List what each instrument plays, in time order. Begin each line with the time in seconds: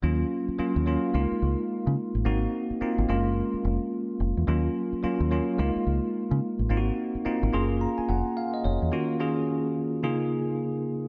0.03 fingered electric bass D#2, tine electric piano F#3 A#3 C#4 F4
0.48 muted fingered electric bass stroke
0.58 tine electric piano F#3 A#3 C#4 F4, muted fingered electric bass stroke
0.76 fingered electric bass D#2
0.86 tine electric piano F#3 A#3 C#4 F4
1.14 fingered electric bass C#2, tine electric piano G#3 A#3 D#4 F4
1.32 muted fingered electric bass stroke
1.42 fingered electric bass C#2
1.87 fingered electric bass C#3
2.15 fingered electric bass A1
2.25 fingered electric bass G#1, tine electric piano A#3 C4 D#4 F#4
2.70 muted fingered electric bass stroke
2.81 tine electric piano A#3 C4 D#4 F4, muted fingered electric bass stroke
2.98 fingered electric bass G#1
3.08 fingered electric bass F#1, tine electric piano G#3 A#3 C#4 F4
3.54 muted fingered electric bass stroke
3.65 fingered electric bass F1
4.20 fingered electric bass F1
4.37 fingered electric bass E2
4.47 fingered electric bass D#2, tine electric piano F#3 A#3 C#4 F4
4.93 muted fingered electric bass stroke
5.03 tine electric piano F#3 A#3 C#4 F4, muted fingered electric bass stroke
5.20 fingered electric bass D#2
5.31 tine electric piano F#3 A#3 C#4 F4
5.58 fingered electric bass C#2, tine electric piano G#3 A#3 D#4 F4
5.76 muted fingered electric bass stroke
5.87 fingered electric bass C#2
6.31 fingered electric bass C#3
6.59 fingered electric bass A1
6.70 fingered electric bass G#1, tine electric piano A#3 C4 D#4 F4
6.77 tine electric piano F#4
7.15 muted fingered electric bass stroke
7.25 tine electric piano A#3 C4 D#4 F4, muted fingered electric bass stroke
7.43 fingered electric bass G#1
7.53 fingered electric bass F#1, tine electric piano A#3 C#4 F4 G#4 C6
7.81 tine electric piano A#5
7.98 tine electric piano G#5, muted fingered electric bass stroke
8.09 fingered electric bass F1, tine electric piano F#5
8.37 tine electric piano F5
8.54 tine electric piano D#5
8.64 fingered electric bass F1, tine electric piano C#5
8.82 fingered electric bass E2
8.92 tine electric piano D#3 A#3 C#4 F4 F#4
9.20 tine electric piano D#3 A#3 C#4 F4 G#4
10.03 tine electric piano C#3 A#3 D#4 F4 G#4